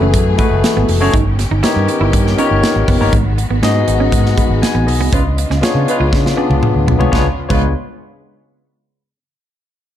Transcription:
Already playing: E3 A3 B3 E4 F#4 G#4 A4 B4
0.01 F#1 C#4
0.14 F#2, kick, closed hi-hat
0.37 G#3 A3 E4 F#4 G#4 B4, kick, closed hi-hat
0.44 A3
0.51 F#1
0.64 snare, closed hi-hat
0.77 G#1 B3
0.89 F1, muted clean electric guitar stroke, open hi-hat
1.00 F#1 A3 C#4 E4 F#4 G#4 C#5
1.13 G1 D#3 C#4 D#4 G4, kick, closed hi-hat
1.39 muted clean electric guitar stroke, snare, closed hi-hat
1.51 G1 D#4
1.63 B3 D#4 E4 G4 A#4 C#5, snare, closed hi-hat
1.76 G2
1.88 muted clean electric guitar stroke, closed hi-hat
2.01 G1 E4
2.13 G2, kick, closed hi-hat
2.27 snare
2.38 B3 C#4 D#4 F4 A#4 C#5, closed hi-hat
2.44 G4
2.51 G1
2.63 muted clean electric guitar stroke, snare, closed hi-hat
2.76 G#1
2.88 F#1 B3, kick, open hi-hat
3.00 G1 A#3 B3 D#4 G4 A#4 C#5
3.13 G#1 G#3 F#4, kick, closed hi-hat
3.38 muted clean electric guitar stroke, closed hi-hat
3.50 G#1 B3
3.62 G#2 B3 C#4 D#4 F#4 G#4 D#5, snare, closed hi-hat
3.88 G#1, muted clean electric guitar stroke, closed hi-hat
4.00 C#4
4.12 G#2, kick, closed hi-hat
4.26 snare
4.37 G#3 B5, kick, closed hi-hat
4.50 G#1
4.62 G#5, snare, closed hi-hat
4.75 A1 B3
4.87 B1 D#5, muted clean electric guitar stroke, open hi-hat
5.00 C2 B3
5.12 C#2 C#3 G#3 B3 C#4 D4 F4 B4, kick, closed hi-hat
5.38 muted clean electric guitar stroke, closed hi-hat
5.50 C#2 C#4, snare
5.61 B3 D4 F4 G#4 C#5, muted fingered electric bass stroke, snare, closed hi-hat
5.75 C#3
5.88 G#3 F4 B4, muted clean electric guitar stroke, closed hi-hat
6.00 C#2 F4
6.13 C#3, kick, snare
6.26 snare
6.36 B3 C#4 D4 F4 G#4 D5
6.50 C#2, high tom
6.63 muted clean electric guitar stroke, mid tom
6.75 D2
6.87 B1 B3, floor tom
6.99 C2 G#3 B3 D4 F4 G#4 C#5, floor tom
7.12 C#2 C#3 G#3 B3 D4 F4 G#4 B4 C#5, kick, snare
7.49 C#2 G#3 B3 D4 F4 G#4 B4 C#5, kick, crash

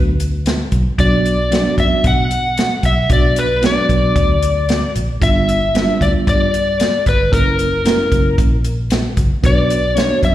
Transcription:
Already playing: D2 F#3 B3 D4 F#4
0.20 closed hi-hat
0.46 snare, closed hi-hat
0.72 B1, kick, closed hi-hat
0.98 B1 F#3 B3 D4 F#4 D5, kick, closed hi-hat
1.25 closed hi-hat
1.51 F#3 B3 D4 F#4, snare, closed hi-hat
1.78 F#2 E5, kick, closed hi-hat
2.04 B2 F#5, kick, closed hi-hat
2.31 closed hi-hat
2.57 snare, closed hi-hat
2.83 B1 E5, kick, closed hi-hat
3.09 B1 F#3 B3 D4 F#4 D5, kick, closed hi-hat
3.36 B4, closed hi-hat
3.62 F#3 B3 D4 F#4, snare, closed hi-hat
3.66 D5
3.89 B1, kick, closed hi-hat
4.16 D2, kick, closed hi-hat
4.42 closed hi-hat
4.69 snare, closed hi-hat
4.95 A#1, closed hi-hat
5.20 G1 G3 B3 D4 F4 E5, kick, closed hi-hat
5.49 closed hi-hat
5.74 G3 B3 D4 F4, snare, closed hi-hat
6.01 D2 D5, kick, closed hi-hat
6.27 G2 D5, kick, closed hi-hat
6.54 closed hi-hat
6.80 snare, closed hi-hat
7.06 G1 B4, kick, closed hi-hat
7.32 F#1 A#3 C#4 E4 A#4, kick, closed hi-hat
7.59 closed hi-hat
7.85 A#3 C#4 E4 A#4, snare, closed hi-hat
8.12 F#1, kick, closed hi-hat
8.38 A#1, kick, closed hi-hat
8.64 closed hi-hat
8.90 snare, closed hi-hat
9.17 F#1, kick, closed hi-hat
9.43 B1 B3 D4 F#4 B4 D5, kick, closed hi-hat
9.70 closed hi-hat
9.95 B3 D4 F#4 C#5 D5, snare, closed hi-hat
10.23 F#2 E5, kick, closed hi-hat

